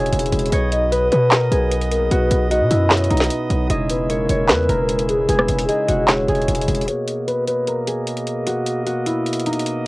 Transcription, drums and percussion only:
0.06 closed hi-hat
0.12 closed hi-hat
0.19 closed hi-hat
0.26 closed hi-hat
0.32 closed hi-hat
0.39 closed hi-hat
0.46 closed hi-hat
0.52 closed hi-hat
0.72 closed hi-hat
0.92 closed hi-hat
1.12 closed hi-hat
1.31 snare, clap, closed hi-hat
1.52 closed hi-hat
1.71 closed hi-hat
1.81 closed hi-hat
1.91 closed hi-hat
2.11 closed hi-hat
2.31 closed hi-hat
2.51 closed hi-hat
2.71 closed hi-hat
2.90 snare, clap, closed hi-hat
2.97 closed hi-hat
3.04 closed hi-hat
3.10 closed hi-hat
3.17 snare, closed hi-hat
3.24 closed hi-hat
3.30 closed hi-hat
3.50 closed hi-hat
3.70 closed hi-hat
3.90 closed hi-hat
4.10 closed hi-hat
4.30 closed hi-hat
4.49 snare, clap, closed hi-hat
4.70 closed hi-hat
4.89 closed hi-hat
4.99 closed hi-hat
5.09 closed hi-hat
5.29 closed hi-hat
5.39 cross-stick
5.49 closed hi-hat, open hi-hat
5.59 closed hi-hat
5.69 closed hi-hat
5.89 closed hi-hat
6.08 snare, clap, closed hi-hat
6.28 closed hi-hat
6.35 closed hi-hat
6.42 closed hi-hat
6.48 closed hi-hat
6.55 closed hi-hat
6.61 closed hi-hat
6.68 closed hi-hat
6.75 closed hi-hat
6.81 closed hi-hat
6.88 closed hi-hat
7.08 closed hi-hat
7.28 closed hi-hat
7.47 closed hi-hat
7.67 closed hi-hat
7.87 closed hi-hat
8.07 closed hi-hat
8.17 closed hi-hat
8.27 closed hi-hat
8.47 closed hi-hat
8.67 closed hi-hat
8.87 closed hi-hat
9.06 closed hi-hat
9.26 closed hi-hat
9.33 closed hi-hat
9.40 closed hi-hat
9.46 closed hi-hat
9.53 closed hi-hat
9.59 closed hi-hat
9.66 closed hi-hat

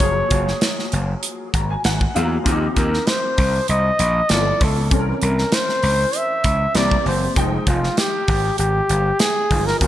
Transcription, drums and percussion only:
0.00 kick, closed hi-hat
0.30 kick, closed hi-hat
0.48 snare
0.61 snare, closed hi-hat
0.79 snare
0.92 closed hi-hat
1.23 closed hi-hat
1.54 kick, closed hi-hat
1.84 snare, closed hi-hat
2.01 kick
2.16 closed hi-hat
2.46 kick, closed hi-hat
2.76 kick, closed hi-hat
2.94 snare
3.07 snare, closed hi-hat
3.38 kick, open hi-hat
3.68 closed hi-hat
3.99 closed hi-hat
4.29 snare, closed hi-hat
4.61 kick, open hi-hat
4.91 kick, closed hi-hat
5.22 closed hi-hat
5.38 snare
5.52 snare, closed hi-hat
5.69 snare
5.83 open hi-hat
6.13 closed hi-hat
6.44 kick, closed hi-hat
6.75 snare, closed hi-hat
6.91 kick
7.06 open hi-hat
7.36 kick, closed hi-hat
7.67 kick, closed hi-hat
7.84 snare
7.97 snare, closed hi-hat
8.28 kick, open hi-hat
8.58 closed hi-hat
8.89 closed hi-hat
9.19 snare, closed hi-hat
9.51 kick, open hi-hat
9.67 snare
9.81 kick, closed hi-hat

